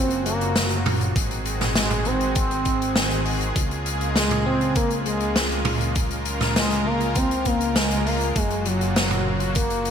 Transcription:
Already playing: F#1 C#3 F#3 A#3 C4 F4 F#4
0.10 closed hi-hat
0.26 A#3, closed hi-hat
0.41 closed hi-hat
0.56 snare, closed hi-hat
0.70 closed hi-hat
0.86 mid tom, open hi-hat
1.01 closed hi-hat
1.16 G#1 D#3 G#3 C4 F#4 G#4, kick, closed hi-hat
1.31 closed hi-hat
1.45 closed hi-hat
1.61 snare, closed hi-hat, mid tom
1.75 G#3, snare, closed hi-hat
1.91 closed hi-hat, mid tom
2.05 C4, closed hi-hat
2.21 closed hi-hat
2.35 C4, kick, closed hi-hat
2.51 closed hi-hat
2.65 kick, closed hi-hat
2.82 closed hi-hat
2.96 snare, closed hi-hat
3.11 closed hi-hat
3.25 open hi-hat
3.41 closed hi-hat
3.56 C#2 C#3 A#3 F4, kick, closed hi-hat
3.71 closed hi-hat
3.86 closed hi-hat
4.01 closed hi-hat
4.16 G#3, snare, closed hi-hat
4.31 closed hi-hat, mid tom
4.46 C4
4.61 closed hi-hat
4.75 A#3, kick, closed hi-hat
4.91 closed hi-hat
5.06 G#3, closed hi-hat
5.20 closed hi-hat
5.36 snare, closed hi-hat
5.51 closed hi-hat
5.65 mid tom, open hi-hat
5.81 closed hi-hat
5.95 A#4, kick, closed hi-hat
6.11 closed hi-hat
6.25 closed hi-hat
6.41 snare, closed hi-hat, mid tom
6.56 G#3, snare, closed hi-hat
6.71 closed hi-hat
6.86 A#3
7.01 closed hi-hat
7.15 C4, kick, closed hi-hat
7.31 closed hi-hat
7.45 A#3, kick, closed hi-hat
7.61 closed hi-hat
7.76 G#3, snare, closed hi-hat
7.91 closed hi-hat
8.06 A#3, open hi-hat
8.21 closed hi-hat
8.36 F#1 F#3 G#3 F#4, kick, closed hi-hat
8.50 closed hi-hat
8.65 F#3, closed hi-hat
8.81 closed hi-hat
8.96 snare, closed hi-hat
9.11 closed hi-hat, mid tom
9.40 closed hi-hat
9.55 A#3, kick, closed hi-hat
9.70 closed hi-hat
9.85 closed hi-hat

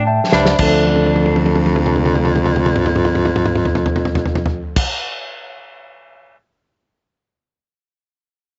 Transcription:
Already playing: A2
0.07 E5 G5 A5
0.32 C#2 G2 D4 C5 E5 B5, snare
0.46 snare
0.58 D2 F2 F3 D4 A4, kick, crash
0.86 high tom
0.96 high tom
1.06 high tom
1.16 high tom
1.26 high tom
1.36 high tom
1.46 high tom
1.55 high tom
1.66 high tom
1.76 high tom
1.86 mid tom
1.96 mid tom
2.06 mid tom
2.15 mid tom
2.25 mid tom
2.36 mid tom
2.46 mid tom
2.56 mid tom
2.66 mid tom
2.76 mid tom
2.86 mid tom
2.96 mid tom
3.05 mid tom
3.15 mid tom
3.25 mid tom
3.36 mid tom
3.46 mid tom
3.55 mid tom
3.65 floor tom
3.75 floor tom
3.86 floor tom
3.96 floor tom
4.05 floor tom
4.15 floor tom
4.26 floor tom
4.35 floor tom
4.46 floor tom
4.76 kick, crash

